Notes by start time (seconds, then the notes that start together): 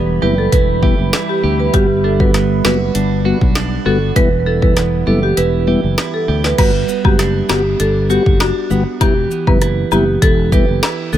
Already playing: E1 E3 G3 B3 E4 B4 E5 B5
0.22 F#1 G3 B3 E4 G4 B4
0.38 A4
0.52 E1 E4 B4, kick, closed hi-hat
0.82 G3 B3 E4 G4, kick
0.99 F#1
1.13 E4, snare, closed hi-hat
1.29 G4
1.43 D2 G4
1.60 B4
1.73 G1 G3 B3 F#4 G4 D5 F#5, kick, closed hi-hat
2.04 D4 A4
2.20 G3 B3 F#4 B4, kick
2.34 B3, cross-stick, snare, closed hi-hat
2.64 F#1 G3 B3 F#4 B4, snare
2.95 G1 D4, closed hi-hat
3.25 G3 B3 F#4
3.41 B1, kick
3.55 D4, snare, closed hi-hat
3.85 G1 G3 B3 F#4 A4
4.16 E1 E3 G3 B3 E4 B4 E5, kick, closed hi-hat
4.46 E4 A4
4.62 G3 B3 E4 B4, kick
4.77 B3, cross-stick, snare, closed hi-hat
5.07 F#1 G3 B3 E4 G4 A4
5.23 G4
5.37 E1 E4 B4, closed hi-hat
5.67 G3 B3 E4 G4
5.84 F#1
5.98 E4, cross-stick, snare, closed hi-hat
6.14 A4
6.28 D2 G4
6.44 B4, snare
6.58 G1 G3 B3 F#4 B4, kick, closed hi-hat, crash, high woodblock
6.89 B3, cabasa
7.04 F#1 G3 B3 F#4 G4, kick, high woodblock
7.19 D4, cross-stick, snare, closed hi-hat
7.49 G1 G3 B3 F#4 G4, snare, cabasa, high woodblock
7.80 G1 D4 A4, closed hi-hat
8.10 G3 B3 F#4 G4, cabasa
8.26 F#1, kick
8.40 D4 F#4, snare, closed hi-hat, high woodblock
8.70 G1 G3 B3 F#4, cabasa
9.01 E1 E3 G3 B3 E4 G4, kick, closed hi-hat, high woodblock
9.31 B3, cabasa
9.47 F#1 G3 B3 E4 B4, kick, high woodblock
9.62 E4, cross-stick, closed hi-hat
9.92 F#1 G3 B3 E4 G4, cabasa, high woodblock
10.22 E1 E4 A4, kick, closed hi-hat
10.52 G3 B3 E4 G4 B4, kick, cabasa
10.68 F#1
10.83 E4, snare, closed hi-hat, high woodblock
11.13 D2 B3 A4, cabasa